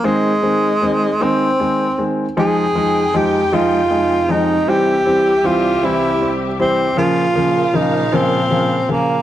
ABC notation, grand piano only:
X:1
M:6/8
L:1/8
Q:3/8=52
K:Fm
V:1 name="Grand piano" clef=bass
[E,A,C] [E,A,C] [E,A,C] [E,A,C] [E,A,C] [E,A,C] | [F,A,E] [F,A,E] [F,A,E] [F,A,E] [A,E] [F,A,E] | [=E,G,C] [E,G,C] [E,G,C] [E,G,C] [G,C] [E,G,C] | [D,F,B,] [D,F,B,] [D,F,B,] [D,F,B,] [D,F,B,] [D,F,B,] |]